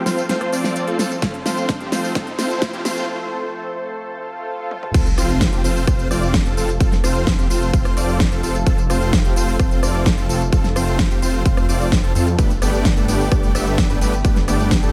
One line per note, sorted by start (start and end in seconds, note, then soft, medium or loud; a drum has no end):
0.00 4.90 F3 medium
0.00 4.90 A3 medium
0.00 4.90 C4 medium
0.00 4.90 A4 medium
0.00 4.90 C5 medium
0.00 riser medium
0.06 0.27 C4 medium
0.06 0.26 F4 medium
0.06 0.27 C5 loud
0.06 snare medium
0.06 open hi-hat loud
0.06 tambourine medium
0.18 closed hi-hat soft
0.18 tambourine soft
0.29 0.50 C4 loud
0.29 0.50 F4 medium
0.29 0.50 C5 loud
0.29 snare medium
0.29 closed hi-hat medium
0.29 tambourine soft
0.41 cross-stick medium
0.41 closed hi-hat soft
0.53 0.85 C4 loud
0.53 0.85 F4 medium
0.53 0.85 D5 loud
0.53 open hi-hat loud
0.53 tambourine medium
0.64 snare medium
0.64 tambourine soft
0.76 closed hi-hat medium
0.76 tambourine soft
0.87 0.96 C4 medium
0.87 0.96 F4 medium
0.87 0.96 A4 medium
0.87 closed hi-hat soft
0.99 1.12 C4 medium
0.99 1.12 F4 medium
0.99 1.12 A4 medium
0.99 snare medium
0.99 open hi-hat loud
0.99 tambourine medium
1.11 closed hi-hat soft
1.11 tambourine soft
1.22 1.35 C4 medium
1.22 1.35 F4 medium
1.22 1.35 A4 loud
1.22 kick loud
1.22 snare medium
1.22 closed hi-hat medium
1.22 tambourine soft
1.34 closed hi-hat soft
1.46 1.78 C4 medium
1.46 1.78 F4 medium
1.46 1.78 C5 loud
1.46 snare medium
1.46 open hi-hat loud
1.46 tambourine medium
1.57 closed hi-hat soft
1.57 tambourine soft
1.69 kick loud
1.69 snare medium
1.69 closed hi-hat medium
1.69 tambourine soft
1.80 1.89 C4 medium
1.80 1.89 F4 medium
1.80 1.89 G4 medium
1.80 closed hi-hat soft
1.92 2.13 C4 medium
1.92 2.13 F4 medium
1.92 2.13 C5 loud
1.92 snare medium
1.92 open hi-hat loud
1.92 tambourine medium
2.04 open hi-hat medium
2.04 tambourine soft
2.15 2.28 C4 medium
2.15 2.28 F4 medium
2.15 2.28 A4 loud
2.15 kick loud
2.15 snare medium
2.15 closed hi-hat medium
2.15 tambourine soft
2.27 closed hi-hat soft
2.39 2.71 C4 medium
2.39 2.71 F4 medium
2.39 2.71 C5 loud
2.39 snare medium
2.39 open hi-hat loud
2.39 tambourine medium
2.50 closed hi-hat soft
2.50 tambourine soft
2.62 kick loud
2.62 snare medium
2.62 closed hi-hat medium
2.62 tambourine soft
2.73 2.82 C4 medium
2.73 2.82 F4 medium
2.73 2.82 G4 medium
2.73 closed hi-hat soft
2.85 3.06 C4 medium
2.85 3.06 F4 medium
2.85 3.06 C5 loud
2.85 snare medium
2.85 open hi-hat loud
2.85 tambourine medium
2.97 closed hi-hat soft
2.97 tambourine soft
4.01 swell medium
4.71 high tom medium
4.83 mid tom medium
4.94 5.15 F1 medium
4.94 12.35 C3 medium
4.94 12.35 F3 medium
4.94 14.92 A3 medium
4.94 5.07 C4 loud
4.94 12.35 F4 medium
4.94 5.07 F4 medium
4.94 12.35 A4 medium
4.94 5.07 A4 loud
4.94 kick loud
4.94 closed hi-hat loud
4.94 crash loud
4.94 tambourine soft
4.94 sub drop medium
5.06 closed hi-hat soft
5.06 tambourine soft
5.18 5.50 F1 loud
5.18 5.50 C4 loud
5.18 5.50 F4 medium
5.18 5.50 C5 loud
5.18 cross-stick medium
5.18 open hi-hat loud
5.18 tambourine medium
5.29 closed hi-hat soft
5.29 tambourine soft
5.41 kick loud
5.41 snare loud
5.41 closed hi-hat loud
5.41 tambourine soft
5.53 5.62 F1 loud
5.53 5.61 C4 medium
5.53 5.61 F4 medium
5.53 5.61 G4 medium
5.53 closed hi-hat soft
5.53 tambourine soft
5.64 5.85 F1 medium
5.64 5.85 C4 loud
5.64 5.85 F4 medium
5.64 5.85 C5 loud
5.64 open hi-hat loud
5.64 tambourine medium
5.76 open hi-hat medium
5.76 tambourine soft
5.87 6.08 F1 loud
5.87 6.08 C4 medium
5.87 6.08 F4 medium
5.87 6.08 C5 loud
5.87 kick loud
5.87 cross-stick medium
5.87 closed hi-hat medium
5.87 tambourine soft
5.99 closed hi-hat soft
5.99 tambourine soft
6.11 6.43 F1 loud
6.11 6.43 C4 loud
6.11 6.43 F4 medium
6.11 6.43 D5 loud
6.11 cross-stick medium
6.11 open hi-hat loud
6.11 tambourine medium
6.22 closed hi-hat soft
6.22 tambourine soft
6.34 kick loud
6.34 snare loud
6.34 closed hi-hat loud
6.34 tambourine soft
6.46 6.55 F1 loud
6.46 6.54 C4 medium
6.46 6.54 F4 medium
6.46 6.54 A4 medium
6.46 closed hi-hat soft
6.46 tambourine soft
6.57 6.78 F1 medium
6.57 6.70 C4 medium
6.57 6.70 F4 medium
6.57 6.70 A4 medium
6.57 open hi-hat loud
6.57 tambourine medium
6.69 closed hi-hat soft
6.69 tambourine soft
6.80 7.01 F1 loud
6.80 6.93 C4 loud
6.80 6.93 F4 medium
6.80 6.93 A4 loud
6.80 kick loud
6.80 closed hi-hat medium
6.80 tambourine soft
6.92 snare soft
6.92 closed hi-hat soft
6.92 tambourine soft
7.04 7.36 F1 loud
7.04 7.36 C4 loud
7.04 7.36 F4 medium
7.04 7.36 C5 loud
7.04 cross-stick medium
7.04 open hi-hat loud
7.04 tambourine medium
7.15 closed hi-hat soft
7.15 tambourine soft
7.27 kick loud
7.27 snare loud
7.27 closed hi-hat loud
7.27 tambourine soft
7.39 7.48 F1 loud
7.39 7.47 C4 medium
7.39 7.47 F4 medium
7.39 7.47 G4 medium
7.39 closed hi-hat soft
7.39 tambourine soft
7.50 7.71 F1 medium
7.50 7.71 C4 medium
7.50 7.71 F4 medium
7.50 7.71 C5 loud
7.50 open hi-hat loud
7.50 tambourine medium
7.62 closed hi-hat soft
7.62 tambourine soft
7.73 7.94 F1 loud
7.73 7.94 C4 loud
7.73 7.94 F4 medium
7.73 7.94 C5 loud
7.73 kick loud
7.73 closed hi-hat medium
7.73 tambourine soft
7.85 cross-stick medium
7.85 closed hi-hat soft
7.85 tambourine soft
7.97 8.29 F1 loud
7.97 8.29 C4 loud
7.97 8.29 F4 medium
7.97 8.29 D5 loud
7.97 open hi-hat loud
7.97 tambourine medium
8.08 open hi-hat medium
8.08 tambourine soft
8.20 kick loud
8.20 snare loud
8.20 closed hi-hat medium
8.20 tambourine soft
8.32 8.41 F1 loud
8.32 8.41 C4 medium
8.32 8.41 F4 medium
8.32 8.41 A4 medium
8.32 closed hi-hat soft
8.32 tambourine soft
8.43 8.64 F1 medium
8.43 8.56 C4 medium
8.43 8.56 F4 medium
8.43 8.56 A4 medium
8.43 open hi-hat loud
8.43 tambourine medium
8.55 closed hi-hat soft
8.55 tambourine soft
8.67 8.87 F1 loud
8.67 8.80 C4 loud
8.67 8.79 F4 medium
8.67 8.80 A4 loud
8.67 kick loud
8.67 closed hi-hat medium
8.67 tambourine soft
8.78 closed hi-hat soft
8.78 tambourine soft
8.90 9.22 F1 loud
8.90 9.22 C4 loud
8.90 9.22 F4 medium
8.90 9.22 C5 loud
8.90 cross-stick medium
8.90 open hi-hat loud
8.90 tambourine medium
9.01 closed hi-hat soft
9.01 tambourine soft
9.13 kick loud
9.13 snare loud
9.13 closed hi-hat medium
9.13 tambourine soft
9.25 9.34 F1 loud
9.25 9.34 C4 medium
9.25 9.34 F4 medium
9.25 9.34 G4 medium
9.25 closed hi-hat soft
9.25 tambourine soft
9.36 9.57 F1 loud
9.36 9.57 C4 medium
9.36 9.57 F4 medium
9.36 9.57 C5 loud
9.36 open hi-hat loud
9.36 tambourine medium
9.48 open hi-hat medium
9.48 tambourine soft
9.60 9.80 F1 loud
9.60 9.80 C4 loud
9.60 9.80 F4 medium
9.60 9.80 C5 loud
9.60 kick loud
9.60 cross-stick medium
9.60 closed hi-hat medium
9.60 tambourine soft
9.71 closed hi-hat soft
9.71 tambourine soft
9.83 10.15 F1 loud
9.83 10.15 C4 medium
9.83 10.15 F4 medium
9.83 10.15 D5 loud
9.83 cross-stick medium
9.83 open hi-hat loud
9.83 tambourine medium
9.94 closed hi-hat soft
9.94 tambourine soft
10.06 kick loud
10.06 snare loud
10.06 closed hi-hat medium
10.06 tambourine soft
10.18 10.27 F1 loud
10.18 10.27 C4 medium
10.18 10.27 F4 medium
10.18 10.27 A4 medium
10.18 closed hi-hat soft
10.18 tambourine soft
10.29 10.50 F1 loud
10.29 10.42 C4 medium
10.29 10.42 F4 medium
10.29 10.42 A4 medium
10.29 open hi-hat loud
10.29 tambourine medium
10.41 closed hi-hat soft
10.41 tambourine soft
10.53 10.73 F1 loud
10.53 10.66 C4 loud
10.53 10.65 F4 medium
10.53 10.66 A4 loud
10.53 kick loud
10.53 closed hi-hat medium
10.53 tambourine soft
10.64 snare soft
10.64 closed hi-hat soft
10.64 tambourine soft
10.76 11.08 F1 loud
10.76 11.08 C4 loud
10.76 11.08 F4 medium
10.76 11.08 C5 loud
10.76 cross-stick medium
10.76 open hi-hat loud
10.76 tambourine medium
10.87 closed hi-hat soft
10.87 tambourine soft
10.99 kick loud
10.99 snare loud
10.99 closed hi-hat medium
10.99 tambourine soft
11.11 11.20 F1 loud
11.11 11.20 C4 medium
11.11 11.20 F4 medium
11.11 11.20 G4 medium
11.11 closed hi-hat soft
11.11 tambourine soft
11.22 11.43 F1 loud
11.22 11.43 C4 loud
11.22 11.43 F4 medium
11.22 11.43 C5 loud
11.22 open hi-hat loud
11.22 tambourine medium
11.34 closed hi-hat soft
11.34 tambourine soft
11.46 11.66 F1 loud
11.46 11.66 C4 loud
11.46 11.66 F4 medium
11.46 11.66 C5 loud
11.46 kick loud
11.46 closed hi-hat medium
11.46 tambourine soft
11.57 cross-stick medium
11.57 closed hi-hat soft
11.57 tambourine soft
11.69 12.01 F1 loud
11.69 12.01 C4 loud
11.69 12.01 F4 medium
11.69 12.01 D5 loud
11.69 open hi-hat loud
11.69 tambourine medium
11.80 open hi-hat medium
11.80 tambourine soft
11.92 kick loud
11.92 snare loud
11.92 closed hi-hat medium
11.92 tambourine soft
12.04 12.13 F1 loud
12.04 12.13 C4 medium
12.04 12.13 F4 medium
12.04 12.13 A4 medium
12.04 closed hi-hat soft
12.04 tambourine soft
12.15 12.36 F2 medium
12.15 12.28 C4 medium
12.15 12.28 F4 medium
12.15 12.28 A4 medium
12.15 open hi-hat loud
12.15 tambourine medium
12.27 closed hi-hat soft
12.27 tambourine soft
12.39 12.60 G1 loud
12.39 14.92 D3 medium
12.39 14.92 G3 medium
12.39 12.52 A3 loud
12.39 12.52 B3 medium
12.39 14.92 B3 medium
12.39 12.52 D4 medium
12.39 12.52 G4 medium
12.39 14.92 G4 medium
12.39 12.52 B4 loud
12.39 kick loud
12.39 closed hi-hat medium
12.39 ride medium
12.39 tambourine soft
12.50 closed hi-hat soft
12.50 tambourine soft
12.62 12.94 G1 loud
12.62 12.94 A3 loud
12.62 12.94 B3 medium
12.62 12.94 D4 medium
12.62 12.94 G4 medium
12.62 12.94 D5 loud
12.62 cross-stick medium
12.62 open hi-hat loud
12.62 ride medium
12.62 tambourine medium
12.73 closed hi-hat soft
12.73 tambourine soft
12.85 kick loud
12.85 snare loud
12.85 closed hi-hat medium
12.85 ride medium
12.85 tambourine soft
12.97 13.06 G1 loud
12.97 13.06 A3 medium
12.97 13.06 B3 medium
12.97 13.06 D4 medium
12.97 13.06 G4 medium
12.97 13.06 A4 medium
12.97 closed hi-hat soft
12.97 tambourine soft
13.08 13.29 G1 medium
13.08 13.29 A3 loud
13.08 13.29 B3 medium
13.08 13.29 D4 medium
13.08 13.29 G4 medium
13.08 13.29 D5 loud
13.08 open hi-hat loud
13.08 ride medium
13.08 tambourine medium
13.20 open hi-hat medium
13.20 tambourine soft
13.32 13.53 G1 loud
13.32 13.52 A3 loud
13.32 13.52 B3 medium
13.32 13.52 D4 medium
13.32 13.52 G4 medium
13.32 13.52 D5 loud
13.32 kick loud
13.32 cross-stick medium
13.32 closed hi-hat medium
13.32 ride medium
13.32 tambourine soft
13.43 closed hi-hat soft
13.43 tambourine soft
13.55 13.87 G1 loud
13.55 13.87 A3 loud
13.55 13.87 B3 medium
13.55 13.87 D4 medium
13.55 13.87 G4 medium
13.55 13.87 E5 loud
13.55 cross-stick medium
13.55 open hi-hat loud
13.55 ride medium
13.55 tambourine medium
13.66 closed hi-hat soft
13.66 tambourine soft
13.78 kick loud
13.78 snare loud
13.78 closed hi-hat medium
13.78 ride medium
13.78 tambourine soft
13.90 13.99 G1 loud
13.90 13.99 A3 medium
13.90 13.99 B3 medium
13.90 13.99 D4 medium
13.90 13.99 G4 medium
13.90 13.99 B4 medium
13.90 closed hi-hat soft
13.90 tambourine soft
14.01 14.22 G1 loud
14.01 14.14 A3 medium
14.01 14.14 B3 medium
14.01 14.14 D4 medium
14.01 14.14 G4 medium
14.01 14.14 B4 medium
14.01 open hi-hat loud
14.01 ride medium
14.01 tambourine medium
14.13 closed hi-hat soft
14.13 tambourine soft
14.25 14.46 G1 loud
14.25 14.38 A3 loud
14.25 14.38 B3 medium
14.25 14.38 D4 medium
14.25 14.38 G4 medium
14.25 14.38 B4 loud
14.25 kick loud
14.25 closed hi-hat loud
14.25 ride medium
14.25 tambourine soft
14.36 snare soft
14.36 closed hi-hat soft
14.36 tambourine soft
14.48 14.80 G1 loud
14.48 14.80 A3 loud
14.48 14.80 B3 medium
14.48 14.80 D4 medium
14.48 14.80 G4 medium
14.48 14.80 D5 loud
14.48 cross-stick medium
14.48 open hi-hat loud
14.48 ride medium
14.48 tambourine medium
14.60 closed hi-hat soft
14.60 tambourine soft
14.71 kick loud
14.71 snare loud
14.71 closed hi-hat medium
14.71 ride medium
14.71 tambourine soft
14.83 14.92 G1 loud
14.83 14.92 A3 medium
14.83 14.92 B3 medium
14.83 14.92 D4 medium
14.83 14.92 G4 medium
14.83 14.92 A4 medium
14.83 closed hi-hat soft
14.83 tambourine soft